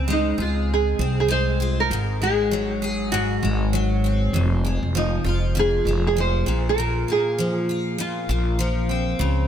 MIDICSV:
0, 0, Header, 1, 4, 480
1, 0, Start_track
1, 0, Tempo, 607903
1, 1510, Time_signature, 4, 2, 24, 8
1, 7481, End_track
2, 0, Start_track
2, 0, Title_t, "Nylon-string guitar"
2, 0, Program_c, 0, 24
2, 97, Note_on_c, 0, 63, 77
2, 326, Note_off_c, 0, 63, 0
2, 329, Note_on_c, 0, 65, 78
2, 566, Note_off_c, 0, 65, 0
2, 581, Note_on_c, 0, 68, 94
2, 924, Note_off_c, 0, 68, 0
2, 949, Note_on_c, 0, 68, 92
2, 1036, Note_off_c, 0, 68, 0
2, 1039, Note_on_c, 0, 72, 106
2, 1420, Note_off_c, 0, 72, 0
2, 1423, Note_on_c, 0, 70, 108
2, 1757, Note_off_c, 0, 70, 0
2, 1760, Note_on_c, 0, 68, 87
2, 2281, Note_off_c, 0, 68, 0
2, 2281, Note_on_c, 0, 66, 87
2, 2462, Note_off_c, 0, 66, 0
2, 2462, Note_on_c, 0, 66, 82
2, 3154, Note_off_c, 0, 66, 0
2, 3929, Note_on_c, 0, 63, 78
2, 4166, Note_off_c, 0, 63, 0
2, 4173, Note_on_c, 0, 65, 77
2, 4235, Note_off_c, 0, 65, 0
2, 4417, Note_on_c, 0, 68, 93
2, 4785, Note_off_c, 0, 68, 0
2, 4795, Note_on_c, 0, 68, 89
2, 4882, Note_off_c, 0, 68, 0
2, 4897, Note_on_c, 0, 72, 105
2, 5241, Note_off_c, 0, 72, 0
2, 5285, Note_on_c, 0, 70, 109
2, 5614, Note_off_c, 0, 70, 0
2, 5620, Note_on_c, 0, 68, 96
2, 6292, Note_off_c, 0, 68, 0
2, 6322, Note_on_c, 0, 65, 86
2, 7002, Note_off_c, 0, 65, 0
2, 7481, End_track
3, 0, Start_track
3, 0, Title_t, "Steel-string acoustic guitar"
3, 0, Program_c, 1, 25
3, 0, Note_on_c, 1, 49, 71
3, 0, Note_on_c, 1, 60, 58
3, 61, Note_on_c, 1, 56, 69
3, 298, Note_on_c, 1, 68, 56
3, 547, Note_off_c, 1, 49, 0
3, 780, Note_off_c, 1, 60, 0
3, 783, Note_on_c, 1, 60, 61
3, 1011, Note_off_c, 1, 56, 0
3, 1014, Note_on_c, 1, 56, 74
3, 1263, Note_on_c, 1, 65, 62
3, 1509, Note_on_c, 1, 44, 80
3, 1564, Note_off_c, 1, 65, 0
3, 1746, Note_off_c, 1, 60, 0
3, 1749, Note_off_c, 1, 56, 0
3, 1749, Note_on_c, 1, 56, 62
3, 1985, Note_on_c, 1, 54, 66
3, 2009, Note_off_c, 1, 68, 0
3, 2227, Note_on_c, 1, 68, 62
3, 2452, Note_off_c, 1, 44, 0
3, 2462, Note_on_c, 1, 44, 80
3, 2702, Note_off_c, 1, 56, 0
3, 2705, Note_on_c, 1, 56, 57
3, 2936, Note_off_c, 1, 54, 0
3, 2946, Note_on_c, 1, 54, 79
3, 3190, Note_on_c, 1, 60, 69
3, 3423, Note_off_c, 1, 44, 0
3, 3426, Note_on_c, 1, 41, 86
3, 3485, Note_off_c, 1, 54, 0
3, 3665, Note_off_c, 1, 56, 0
3, 3668, Note_on_c, 1, 56, 64
3, 3908, Note_on_c, 1, 53, 74
3, 4138, Note_off_c, 1, 68, 0
3, 4141, Note_on_c, 1, 65, 70
3, 4373, Note_off_c, 1, 41, 0
3, 4382, Note_on_c, 1, 41, 77
3, 4623, Note_off_c, 1, 56, 0
3, 4633, Note_on_c, 1, 56, 66
3, 4865, Note_off_c, 1, 53, 0
3, 4868, Note_on_c, 1, 53, 80
3, 5103, Note_on_c, 1, 46, 77
3, 5105, Note_off_c, 1, 41, 0
3, 5127, Note_off_c, 1, 60, 0
3, 5168, Note_off_c, 1, 56, 0
3, 5343, Note_off_c, 1, 46, 0
3, 5353, Note_on_c, 1, 46, 79
3, 5592, Note_on_c, 1, 58, 56
3, 5828, Note_off_c, 1, 53, 0
3, 5831, Note_on_c, 1, 53, 72
3, 6070, Note_off_c, 1, 65, 0
3, 6073, Note_on_c, 1, 65, 64
3, 6294, Note_off_c, 1, 46, 0
3, 6304, Note_on_c, 1, 46, 78
3, 6537, Note_off_c, 1, 58, 0
3, 6546, Note_on_c, 1, 58, 62
3, 6778, Note_off_c, 1, 53, 0
3, 6781, Note_on_c, 1, 53, 68
3, 7021, Note_on_c, 1, 60, 62
3, 7255, Note_off_c, 1, 46, 0
3, 7258, Note_on_c, 1, 49, 73
3, 7323, Note_off_c, 1, 58, 0
3, 7481, Note_off_c, 1, 49, 0
3, 7481, Note_off_c, 1, 53, 0
3, 7481, Note_off_c, 1, 60, 0
3, 7481, Note_off_c, 1, 65, 0
3, 7481, End_track
4, 0, Start_track
4, 0, Title_t, "Upright bass"
4, 0, Program_c, 2, 32
4, 0, Note_on_c, 2, 37, 83
4, 280, Note_off_c, 2, 37, 0
4, 301, Note_on_c, 2, 37, 99
4, 754, Note_off_c, 2, 37, 0
4, 783, Note_on_c, 2, 36, 93
4, 1475, Note_off_c, 2, 36, 0
4, 1504, Note_on_c, 2, 32, 96
4, 2676, Note_off_c, 2, 32, 0
4, 2708, Note_on_c, 2, 32, 99
4, 3397, Note_off_c, 2, 32, 0
4, 3421, Note_on_c, 2, 29, 101
4, 3778, Note_off_c, 2, 29, 0
4, 3811, Note_on_c, 2, 29, 91
4, 4121, Note_off_c, 2, 29, 0
4, 4141, Note_on_c, 2, 29, 97
4, 4593, Note_off_c, 2, 29, 0
4, 4621, Note_on_c, 2, 29, 94
4, 5073, Note_off_c, 2, 29, 0
4, 5102, Note_on_c, 2, 34, 104
4, 5553, Note_off_c, 2, 34, 0
4, 6546, Note_on_c, 2, 34, 102
4, 7234, Note_off_c, 2, 34, 0
4, 7262, Note_on_c, 2, 37, 103
4, 7481, Note_off_c, 2, 37, 0
4, 7481, End_track
0, 0, End_of_file